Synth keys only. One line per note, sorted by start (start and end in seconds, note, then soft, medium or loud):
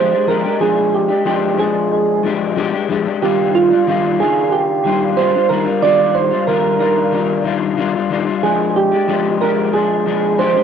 0.00 0.29 C5 medium
0.28 0.58 A#4 medium
0.61 0.94 G#4 medium
0.94 1.24 G4 medium
1.27 1.57 G4 medium
1.60 2.20 G#4 medium
3.22 3.56 G4 medium
3.55 4.16 F4 medium
4.20 4.53 G#4 medium
4.52 5.19 G4 medium
5.17 5.48 C5 medium
5.49 5.83 A#4 medium
5.82 6.16 D5 loud
6.15 6.49 C5 medium
6.47 6.79 A#4 medium
6.80 7.42 A#4 medium
8.43 8.77 G#4 medium
8.76 9.37 G4 medium
9.41 9.75 A#4 medium
9.74 10.41 G#4 medium
10.39 10.63 C5 medium